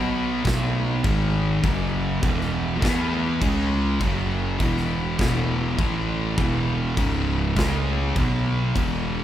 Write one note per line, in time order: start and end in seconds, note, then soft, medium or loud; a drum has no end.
0.00 0.41 B1 medium
0.00 0.44 B2 loud
0.00 0.44 F#3 medium
0.00 0.45 B3 loud
0.45 1.01 B1 loud
0.45 1.03 B2 loud
0.45 1.04 F#3 loud
0.45 1.04 B3 loud
0.45 kick loud
0.45 snare loud
0.45 crash medium
1.04 1.60 G#1 medium
1.04 1.63 G#2 loud
1.04 1.63 D#3 loud
1.04 1.63 G#3 loud
1.04 kick loud
1.04 crash medium
1.63 2.19 F#1 loud
1.63 2.21 F#2 medium
1.63 2.22 C#3 loud
1.63 2.23 F#3 loud
1.63 kick loud
1.63 crash medium
2.22 2.79 E1 loud
2.22 2.81 E2 medium
2.22 2.81 B2 medium
2.22 2.81 E3 loud
2.22 kick loud
2.22 crash medium
2.41 snare soft
2.81 3.38 E2 loud
2.81 3.40 E3 loud
2.81 3.41 B3 loud
2.81 3.41 E4 loud
2.81 kick loud
2.81 snare loud
2.81 crash medium
3.41 3.97 C#2 medium
3.41 4.00 C#3 medium
3.41 4.00 G#3 loud
3.41 4.01 C#4 medium
3.41 kick loud
3.41 crash medium
4.00 4.56 F#1 loud
4.00 4.59 F#2 medium
4.00 4.60 C#3 medium
4.00 4.60 F#3 medium
4.00 kick loud
4.00 crash medium
4.59 5.16 E1 loud
4.59 5.18 E2 medium
4.59 5.18 B2 loud
4.59 5.19 E3 loud
4.59 kick loud
4.59 crash medium
4.77 snare soft
5.19 5.75 E1 loud
5.19 5.78 E2 loud
5.19 5.79 B2 loud
5.19 5.79 E3 loud
5.19 kick loud
5.19 snare loud
5.19 crash medium
5.78 6.34 A1 medium
5.78 6.37 A2 loud
5.78 6.37 E3 loud
5.78 6.38 A3 medium
5.78 kick loud
5.78 crash medium
6.38 6.94 E1 loud
6.38 6.96 E2 medium
6.38 6.97 B2 loud
6.38 6.97 E3 loud
6.38 kick loud
6.38 crash medium
6.97 7.53 C#1 medium
6.97 7.56 C#2 loud
6.97 7.55 G#2 medium
6.97 7.55 C#3 loud
6.97 kick loud
6.97 crash medium
7.56 8.12 C#2 loud
7.56 8.15 C#3 medium
7.56 8.15 G#3 loud
7.56 8.16 C#4 loud
7.56 kick loud
7.56 snare loud
7.56 crash medium
8.16 8.72 B1 loud
8.16 8.75 B2 loud
8.16 8.75 F#3 loud
8.16 8.76 B3 loud
8.16 kick loud
8.16 crash medium
8.75 9.24 E1 medium
8.75 9.24 E2 medium
8.75 9.24 B2 loud
8.75 9.24 E3 loud
8.75 kick loud
8.75 crash medium